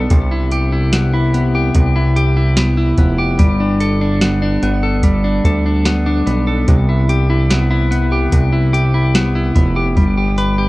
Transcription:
Already playing: clean electric guitar G3 B3 D4 A4
0.10 analog synth bass C2, clean electric guitar C3, kick, closed hi-hat
0.31 clean electric guitar E4
0.51 clean electric guitar G4, closed hi-hat
0.72 clean electric guitar E4
0.93 clean electric guitar B3, snare, closed hi-hat
1.13 clean electric guitar E4
1.34 clean electric guitar B3, closed hi-hat
1.55 clean electric guitar G4
1.74 analog synth bass C2, clean electric guitar C3, kick, closed hi-hat
1.96 clean electric guitar E4
2.16 clean electric guitar G4, closed hi-hat
2.37 clean electric guitar E4
2.57 clean electric guitar B3, snare, closed hi-hat
2.77 clean electric guitar E4
2.98 analog synth bass F1, clean electric guitar B3, kick, closed hi-hat
3.18 clean electric guitar G4
3.39 analog synth bass G1, clean electric guitar G3, kick, closed hi-hat
3.60 clean electric guitar D4
3.80 clean electric guitar A4, closed hi-hat
4.01 clean electric guitar D4
4.21 clean electric guitar B3, snare, closed hi-hat
4.42 clean electric guitar D4
4.62 analog synth bass G1, clean electric guitar B3, closed hi-hat
4.83 clean electric guitar A4
5.03 clean electric guitar G3, kick, closed hi-hat
5.24 clean electric guitar D4
5.45 analog synth bass D2, clean electric guitar A4, kick, closed hi-hat
5.66 clean electric guitar D4
5.86 clean electric guitar B3, snare, closed hi-hat
6.06 clean electric guitar D4
6.26 analog synth bass B1, clean electric guitar B3, closed hi-hat
6.47 clean electric guitar A4
6.68 analog synth bass C2, clean electric guitar C3, kick, closed hi-hat
6.89 clean electric guitar E4
7.09 clean electric guitar G4, closed hi-hat
7.30 clean electric guitar E4
7.50 clean electric guitar B3, snare, closed hi-hat
7.71 clean electric guitar E4
7.91 clean electric guitar B3, closed hi-hat
8.12 clean electric guitar G4
8.32 analog synth bass C2, clean electric guitar C3, kick, closed hi-hat
8.52 clean electric guitar E4
8.73 clean electric guitar G4, closed hi-hat
8.94 clean electric guitar E4
9.15 clean electric guitar B3, snare, closed hi-hat
9.35 clean electric guitar E4
9.55 analog synth bass F1, clean electric guitar B3, kick, closed hi-hat
9.76 clean electric guitar G4
9.97 analog synth bass G1, clean electric guitar G3, kick, closed hi-hat
10.17 clean electric guitar G4
10.38 clean electric guitar B4, closed hi-hat
10.58 clean electric guitar G4

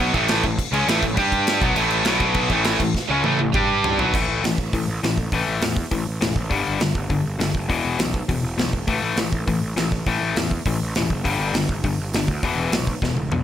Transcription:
Already playing: picked electric bass B1, overdriven electric guitar B2 F#3 B3
0.14 picked electric bass A1, overdriven electric guitar A2 E3 A3, kick, crash
0.28 snare, crash
0.43 picked electric bass A1, overdriven electric guitar A2 E3, kick, crash
0.59 kick, crash
0.72 picked electric bass C#2, overdriven electric guitar C#3 G#3 C#4, crash
0.87 picked electric bass A1, overdriven electric guitar A2 E3 A3, snare, crash
1.02 picked electric bass A1, overdriven electric guitar A2 E3, kick, crash
1.17 picked electric bass G2, overdriven electric guitar G3 D4 G4, kick, crash
1.32 kick, crash
1.47 snare, crash
1.61 picked electric bass B1, overdriven electric guitar B2 F#3 B3, kick, crash
1.76 picked electric bass A1, overdriven electric guitar A2 E3 A3, crash
1.91 crash
2.05 picked electric bass B1, overdriven electric guitar B2 F#3 B3, snare, crash
2.20 kick, crash
2.34 kick, crash
2.50 picked electric bass A1, overdriven electric guitar A2 E3 A3, kick, crash
2.64 snare, crash
2.79 picked electric bass A1, overdriven electric guitar A2 E3, kick, crash
2.94 kick, snare
3.09 picked electric bass C#2, overdriven electric guitar C#3 G#3 C#4
3.24 picked electric bass A1, overdriven electric guitar A2 E3 A3, high tom
3.39 picked electric bass A1, overdriven electric guitar A2 E3, high tom
3.54 picked electric bass G2, overdriven electric guitar G3 D4 G4, kick, mid tom
3.84 floor tom
3.99 picked electric bass B1, overdriven electric guitar B2 F#3 B3, floor tom
4.13 picked electric bass A1, overdriven electric guitar A2 E3 A3, kick, crash
4.29 picked electric bass A1
4.42 picked electric bass A1, overdriven electric guitar A2 E3, snare, open hi-hat
4.58 picked electric bass A1, kick
4.72 picked electric bass A1, overdriven electric guitar A2 E3, kick, open hi-hat
4.88 picked electric bass A1
5.03 picked electric bass A1, overdriven electric guitar A2 E3, snare, open hi-hat
5.18 picked electric bass A1, kick
5.32 picked electric bass A1, overdriven electric guitar A2 E3 A3, kick, open hi-hat
5.47 picked electric bass A1
5.61 picked electric bass E2, overdriven electric guitar A2 E3, snare, open hi-hat
5.77 kick
5.91 picked electric bass A1, overdriven electric guitar A2 E3, kick, open hi-hat
6.07 picked electric bass A1
6.21 picked electric bass E1, overdriven electric guitar A2 E3, snare, open hi-hat
6.36 picked electric bass A1, kick
6.50 picked electric bass G1, overdriven electric guitar G2 D3 G3, kick, open hi-hat
6.68 picked electric bass G1
6.79 picked electric bass G1, overdriven electric guitar G2 D3, snare, open hi-hat
6.95 picked electric bass G1, kick
7.10 picked electric bass G1, overdriven electric guitar G2 D3, kick, open hi-hat
7.25 picked electric bass G1
7.39 picked electric bass G1, overdriven electric guitar G2 D3, snare, open hi-hat
7.54 picked electric bass F#1, kick
7.69 picked electric bass E1, overdriven electric guitar E2 B2 E3, kick, open hi-hat
7.85 picked electric bass E1
7.99 picked electric bass B1, overdriven electric guitar E2 B2, snare, open hi-hat
8.14 kick
8.29 picked electric bass E1, overdriven electric guitar E2 B2, kick, open hi-hat
8.43 picked electric bass E1
8.58 picked electric bass B1, overdriven electric guitar E2 B2, snare, open hi-hat
8.73 picked electric bass E1, kick
8.87 picked electric bass A1, overdriven electric guitar A2 E3 A3, kick, open hi-hat
9.02 picked electric bass A1
9.16 picked electric bass A1, overdriven electric guitar A2 E3, snare, open hi-hat
9.32 picked electric bass A1, kick
9.47 picked electric bass A1, overdriven electric guitar A2 E3, kick, open hi-hat
9.61 picked electric bass A1
9.76 picked electric bass A1, overdriven electric guitar A2 E3, snare, open hi-hat
9.91 picked electric bass A1, kick
10.06 picked electric bass A1, overdriven electric guitar A2 E3 A3, kick, open hi-hat
10.21 picked electric bass A1
10.36 picked electric bass E2, overdriven electric guitar A2 E3, snare, open hi-hat
10.51 kick
10.66 picked electric bass A1, overdriven electric guitar A2 E3, kick, open hi-hat
10.82 picked electric bass A1
10.95 picked electric bass E1, overdriven electric guitar A2 E3, snare, open hi-hat
11.10 picked electric bass F#1, kick
11.24 picked electric bass G1, overdriven electric guitar G2 D3 G3, kick, open hi-hat
11.39 picked electric bass G1
11.53 picked electric bass G1, overdriven electric guitar G2 D3, snare, open hi-hat
11.69 picked electric bass G1, kick
11.84 picked electric bass G1, overdriven electric guitar G2 D3, kick, open hi-hat
11.99 picked electric bass G1
12.13 picked electric bass G1, overdriven electric guitar G2 D3, snare, open hi-hat
12.28 picked electric bass D2, kick
12.43 picked electric bass E1, overdriven electric guitar E2 B2 E3, kick, open hi-hat
12.56 picked electric bass E1
12.71 picked electric bass B1, overdriven electric guitar E2 B2, snare, open hi-hat
12.87 kick
13.02 picked electric bass E1, overdriven electric guitar E2 B2, kick, snare
13.14 picked electric bass E1, high tom
13.29 picked electric bass B1, overdriven electric guitar E2 B2, mid tom

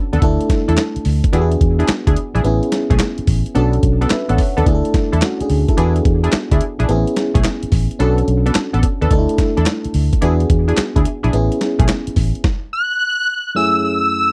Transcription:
Already playing: fm electric piano C#4 D4 F#4 A4
0.13 fingered electric bass D#2, analog polysynth B3 D4 A4, closed hi-hat
0.22 fingered electric bass D2, fm electric piano A3 D4 E4 A4, kick, closed hi-hat
0.41 closed hi-hat
0.50 kick, snare, closed hi-hat
0.68 fingered electric bass E2, analog polysynth D4 E4 A4, closed hi-hat
0.77 snare, clap, closed hi-hat
0.96 muted fingered electric bass stroke, closed hi-hat
1.05 fingered electric bass D2, open hi-hat
1.24 kick, closed hi-hat
1.33 fingered electric bass E2, fm electric piano B3 D4 F#4 G4, analog polysynth D4 E4 G#4, closed hi-hat
1.41 fm electric piano G#4
1.52 closed hi-hat
1.61 fingered electric bass E2, kick, closed hi-hat
1.79 analog polysynth D4 E4 G#4, closed hi-hat
1.88 muted fingered electric bass stroke, snare, clap, closed hi-hat
2.07 fingered electric bass D2, analog polysynth D4 E4 G#4, kick, closed hi-hat
2.17 closed hi-hat
2.35 fingered electric bass A#1, analog polysynth D4 E4 G#4, closed hi-hat
2.44 fingered electric bass A1, fm electric piano B3 C#4 E4 G#4, closed hi-hat
2.63 closed hi-hat
2.72 snare, closed hi-hat
2.90 fingered electric bass B1, analog polysynth A3 C#4 G#4, kick, closed hi-hat
2.99 snare, clap, closed hi-hat
3.18 muted fingered electric bass stroke, closed hi-hat
3.27 fingered electric bass A1, kick, open hi-hat
3.46 closed hi-hat
3.55 fingered electric bass B1, analog polysynth B3 D4 A4, fm electric piano C#4 D4 F#4 A4, closed hi-hat
3.73 closed hi-hat
3.83 fingered electric bass B1, kick, closed hi-hat
4.01 analog polysynth B3 D4 A4, closed hi-hat
4.10 fm electric piano B4 E5, muted fingered electric bass stroke, snare, clap, closed hi-hat
4.29 fingered electric bass A1, analog polysynth B3 D4 A4, fm electric piano C#5 F#5, closed hi-hat
4.38 kick, open hi-hat
4.57 fingered electric bass D#2, analog polysynth B3 D4 A4, fm electric piano A4 D5, closed hi-hat
4.66 fingered electric bass D2, fm electric piano A3 D4 E4 G#4, kick, closed hi-hat
4.75 fm electric piano A4
4.85 closed hi-hat
4.94 kick, snare, closed hi-hat
5.12 fingered electric bass E2, analog polysynth D4 E4 A4, closed hi-hat
5.22 fm electric piano C#4 F#4, snare, clap, closed hi-hat
5.40 fm electric piano D4 G#4, muted fingered electric bass stroke, closed hi-hat
5.50 fingered electric bass D2, open hi-hat
5.68 fm electric piano E4 A4, kick, closed hi-hat
5.77 fingered electric bass E2, fm electric piano B3 D4 F#4 G#4, analog polysynth D4 E4 G#4, closed hi-hat
5.96 closed hi-hat
6.05 fingered electric bass E2, kick, closed hi-hat
6.24 analog polysynth D4 E4 G#4, closed hi-hat
6.32 muted fingered electric bass stroke, snare, clap, closed hi-hat
6.51 fingered electric bass D2, analog polysynth D4 E4 G#4, kick, closed hi-hat
6.61 closed hi-hat
6.79 fingered electric bass A#1, analog polysynth D4 E4 G#4, closed hi-hat
6.88 fingered electric bass A1, fm electric piano B3 C4 E4 G#4, closed hi-hat
6.96 fm electric piano C#4
7.07 closed hi-hat
7.16 snare, closed hi-hat
7.34 fingered electric bass B1, analog polysynth A3 C#4 G#4, kick, closed hi-hat
7.44 snare, clap, closed hi-hat
7.63 muted fingered electric bass stroke, closed hi-hat
7.72 fingered electric bass A1, kick, open hi-hat
7.91 closed hi-hat
7.99 fingered electric bass B1, analog polysynth B3 D4 A4, fm electric piano C#4 D4 F#4 A4, closed hi-hat
8.18 closed hi-hat
8.28 fingered electric bass B1, closed hi-hat
8.46 analog polysynth B3 D4 A4, closed hi-hat
8.55 muted fingered electric bass stroke, snare, clap, closed hi-hat
8.73 fingered electric bass A1, analog polysynth B3 D4 A4, closed hi-hat
8.83 kick, closed hi-hat
9.01 fingered electric bass D#2, analog polysynth B3 D4 A4, closed hi-hat
9.11 fingered electric bass D2, fm electric piano A3 D4 D#4 A4, kick, closed hi-hat
9.19 fm electric piano E4
9.29 closed hi-hat
9.38 kick, snare, closed hi-hat
9.57 fingered electric bass E2, analog polysynth D4 E4 A4, closed hi-hat
9.66 snare, clap, closed hi-hat
9.85 muted fingered electric bass stroke, closed hi-hat
9.94 fingered electric bass D2, open hi-hat
10.13 kick, closed hi-hat
10.21 fingered electric bass E2, fm electric piano B3 D4 F#4 G#4, analog polysynth D4 E4 G#4, closed hi-hat
10.40 closed hi-hat
10.50 fingered electric bass E2, kick, closed hi-hat
10.68 analog polysynth D4 E4 G#4, closed hi-hat
10.77 muted fingered electric bass stroke, snare, clap, closed hi-hat
10.96 fingered electric bass D2, analog polysynth D4 E4 G#4, kick, closed hi-hat
11.05 closed hi-hat
11.23 fingered electric bass A#1, analog polysynth D4 E4 G#4, closed hi-hat
11.33 fingered electric bass A1, fm electric piano B3 C#4 E4 G#4, closed hi-hat
11.52 closed hi-hat
11.61 snare, closed hi-hat
11.79 fingered electric bass B1, analog polysynth A3 C#4 G#4, kick, closed hi-hat
11.88 snare, clap, closed hi-hat
12.07 muted fingered electric bass stroke, closed hi-hat
12.16 fingered electric bass A1, kick, open hi-hat
12.35 closed hi-hat
12.44 kick, snare
12.73 analog synth lead F#6
13.55 fm electric piano F#2 A3 C#4 E4 G#4, analog synth lead E6
13.84 analog synth lead E6

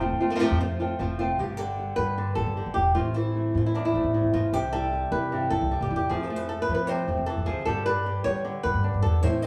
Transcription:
0.00 nylon-string guitar A3 C4 F4
0.11 upright bass F2
0.20 nylon-string guitar A3 C4 F4, muted nylon-string guitar stroke
0.30 nylon-string guitar F3 A3 C4 F4
0.35 nylon-string guitar C3 F3 A3 C4 F4
0.40 nylon-string guitar F3 A3 C4 F4
0.51 upright bass F2
0.60 nylon-string guitar C3 F3 A3 C4 F4, muted nylon-string guitar stroke
0.79 nylon-string guitar A3 C4 F4
0.99 upright bass F1, nylon-string guitar F3 A3 C4 F4, muted nylon-string guitar stroke
1.19 nylon-string guitar A3 C4 F4
1.38 upright bass G1, nylon-string guitar G2 B2 D3 G3 B3 G4
1.57 nylon-string guitar D3 G3 B3 G4 A4
1.78 nylon-string guitar D3 G3 B3 G4
1.96 upright bass G2, nylon-string guitar G3 B3 G4 B4
2.17 nylon-string guitar D3, muted nylon-string guitar stroke
2.35 upright bass G1, nylon-string guitar G3 B3 G4 A4
2.47 upright bass G1
2.56 nylon-string guitar D3 G3 B3 G4
2.66 upright bass G1
2.74 upright bass E1, nylon-string guitar G4
2.95 upright bass A1, nylon-string guitar A2 E3 A3 C4 E4 F4
3.14 nylon-string guitar E3 A3 C4 E4
3.34 nylon-string guitar E3 A3 C4 E4
3.54 upright bass A2, nylon-string guitar A3 C4 E4 F4
3.66 nylon-string guitar E4
3.74 nylon-string guitar E2 D4, muted nylon-string guitar stroke
3.85 nylon-string guitar E4
3.94 upright bass A1, nylon-string guitar A3 C4 E4
4.04 upright bass A1
4.13 nylon-string guitar A2 A3 C4 E4
4.23 upright bass A1
4.33 upright bass G#1, nylon-string guitar B2 F4
4.53 upright bass C2, nylon-string guitar C3 E3 G3 D4 E4 G4
4.72 nylon-string guitar G3 D4 E4 A4
4.92 muted nylon-string guitar stroke
5.12 upright bass C3, nylon-string guitar G3 D4 E4 B4
5.32 nylon-string guitar G2 C3 E3 G3 D4 E4
5.50 upright bass C2, nylon-string guitar G3 D4 E4 A4
5.61 upright bass C2
5.71 nylon-string guitar G3, muted nylon-string guitar stroke
5.81 upright bass C2, nylon-string guitar G4
5.90 upright bass E2, nylon-string guitar G3 D4 E4
5.96 nylon-string guitar G4
6.09 upright bass F2, nylon-string guitar C3 F3 A3 C4 F4 G#4
6.23 nylon-string guitar A4
6.29 nylon-string guitar A3 C4 F4
6.36 nylon-string guitar B4
6.49 nylon-string guitar A4, muted nylon-string guitar stroke
6.62 nylon-string guitar B4
6.68 upright bass F3, nylon-string guitar A3 C4 F4
6.75 nylon-string guitar B4
6.87 nylon-string guitar C3 F3 A3 C4 F4 C5
7.07 upright bass F2, nylon-string guitar A3 C4 F4
7.17 upright bass F2
7.26 nylon-string guitar E3 A4, muted nylon-string guitar stroke
7.37 upright bass F2
7.46 upright bass D2, nylon-string guitar F3 A3 C4 F4 G#4
7.65 upright bass G2, nylon-string guitar B2 D3 G3 B3 G4 A4
7.86 nylon-string guitar G3 B3 D4 G4 B4
8.06 nylon-string guitar G3 B3 G4
8.24 nylon-string guitar D3 G3 B3 G4 C#5, upright bass G3
8.45 nylon-string guitar D3, muted nylon-string guitar stroke
8.63 upright bass G2, nylon-string guitar G3 B3 G4 B4
8.74 upright bass G2
8.84 nylon-string guitar D4
8.94 upright bass G2
9.02 upright bass E2, nylon-string guitar G3 B3 G4 A4
9.22 upright bass A2, nylon-string guitar A2 E3 A3 C4 E4 C5
9.42 nylon-string guitar C4 E4 D5

